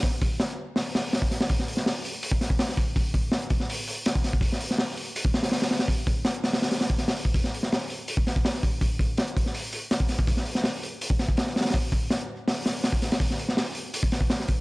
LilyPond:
\new DrumStaff \with { instrumentName = "Drums" } \drummode { \time 4/4 \tempo 4 = 164 <hho bd>8 <hho bd>8 <hho sn>16 hh8. <hho sn>8 <hho sn>8 <hho sn>16 bd16 <hho sn>16 <hho sn>16 | <hho bd>16 sn16 hho16 sn16 <hho sn>8 hho8 hho16 bd16 <hho sn>16 bd16 <hho sn>16 sn16 <hho bd>8 | <hho bd>8 <hho bd>8 <hho sn>16 hh16 <hho bd>16 sn16 hho8 hho8 <hho sn>16 bd16 <hho sn>16 bd16 | <hho bd>16 sn16 hho16 sn16 <hho sn>8 hho8 hho16 bd16 <hho sn>16 <hho sn>16 <hho sn>16 <hho sn>16 <hho sn>16 <hho sn>16 |
<hho bd>8 <hho bd>8 <hho sn>16 hh16 <hho sn>16 <hho sn>16 <hho sn>16 <hho sn>16 <hho sn>16 bd16 <hho sn>16 <hho sn>16 hho16 bd16 | <hho bd>16 sn16 hho16 sn16 <hho sn>8 hho8 hho16 bd16 <hho sn>16 bd16 <hho sn>16 sn16 <hho bd>8 | <hho bd>8 <hho bd>8 <hho sn>16 hh16 <hho bd>16 sn16 hho8 hho8 <hho sn>16 bd16 <hho sn>16 bd16 | <hho bd>16 sn16 hho16 sn16 <hho sn>8 hho8 hho16 bd16 <hho sn>16 bd16 <hho sn>16 sn16 <hho sn>32 <hho sn>32 <hho sn>32 <hho sn>32 |
<hho bd>8 <hho bd>8 <hho sn>16 hh8. <hho sn>8 <hho sn>8 <hho sn>16 bd16 <hho sn>16 <hho sn>16 | <hho bd>16 sn16 hho16 sn16 <hho sn>8 hho8 hho16 bd16 <hho sn>16 bd16 <hho sn>16 sn16 <hho bd>8 | }